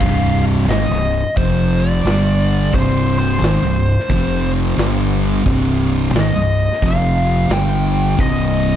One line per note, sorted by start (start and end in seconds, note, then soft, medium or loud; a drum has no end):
0.00 0.65 C1 medium
0.00 0.69 C2 loud
0.00 0.69 G2 loud
0.00 0.69 C3 loud
0.00 0.41 F5 loud
0.00 kick loud
0.00 crash loud
0.44 open hi-hat soft
0.68 0.89 G#1 medium
0.68 0.90 G#2 loud
0.68 0.90 D#3 loud
0.68 1.37 D#5 loud
0.68 snare medium
0.68 open hi-hat medium
0.90 1.22 C1 medium
0.90 1.21 C2 medium
0.90 1.21 G2 medium
1.14 open hi-hat medium
1.37 2.01 F1 medium
1.37 2.05 F2 medium
1.37 2.05 C3 medium
1.37 2.06 F3 loud
1.37 1.80 C5 medium
1.37 kick loud
1.37 open hi-hat medium
1.80 2.75 D5 medium
1.80 open hi-hat medium
2.05 2.69 G1 medium
2.05 2.73 G2 medium
2.05 2.74 D3 medium
2.05 2.74 G3 medium
2.05 snare loud
2.05 open hi-hat medium
2.49 open hi-hat medium
2.73 3.38 C1 medium
2.73 3.41 C2 loud
2.73 3.42 G2 loud
2.73 3.42 C3 loud
2.73 3.17 C5 medium
2.73 kick medium
2.73 open hi-hat medium
3.17 4.51 C5 medium
3.17 open hi-hat medium
3.42 3.62 G#1 medium
3.42 3.63 G#2 medium
3.42 3.63 D#3 loud
3.42 snare loud
3.42 open hi-hat medium
3.63 3.95 C1 medium
3.63 3.93 C2 medium
3.63 3.94 G2 medium
3.86 open hi-hat medium
4.00 snare soft
4.09 4.74 F1 loud
4.09 4.77 F2 medium
4.09 4.78 C3 loud
4.09 4.78 F3 loud
4.09 kick loud
4.09 open hi-hat medium
4.54 open hi-hat medium
4.77 5.42 G1 medium
4.77 5.44 G2 medium
4.77 5.45 D3 medium
4.77 5.45 G3 medium
4.77 snare loud
4.77 open hi-hat medium
5.21 open hi-hat medium
5.45 6.10 C1 medium
5.45 6.13 C2 loud
5.45 6.14 G2 medium
5.45 6.14 C3 loud
5.45 kick loud
5.45 open hi-hat medium
5.89 open hi-hat medium
6.14 6.35 G#1 loud
6.14 6.35 G#2 medium
6.14 6.35 D#3 loud
6.14 snare loud
6.14 open hi-hat medium
6.20 6.87 D#5 medium
6.35 6.68 C1 medium
6.35 6.66 C2 medium
6.35 6.66 G2 medium
6.59 open hi-hat medium
6.73 snare soft
6.82 7.47 F1 medium
6.82 7.50 F2 loud
6.82 7.50 C3 loud
6.82 7.50 F3 medium
6.82 kick loud
6.82 open hi-hat medium
6.86 7.52 F5 loud
7.26 open hi-hat soft
7.49 8.15 G1 medium
7.49 8.18 G2 medium
7.49 8.18 D3 loud
7.49 8.18 G3 medium
7.49 8.22 G5 loud
7.49 snare loud
7.49 open hi-hat medium
7.94 open hi-hat medium
8.18 8.76 C1 loud
8.18 8.76 C2 medium
8.18 8.76 G2 loud
8.18 8.76 C3 loud
8.18 8.76 D#5 medium
8.18 kick loud
8.18 open hi-hat medium
8.63 open hi-hat medium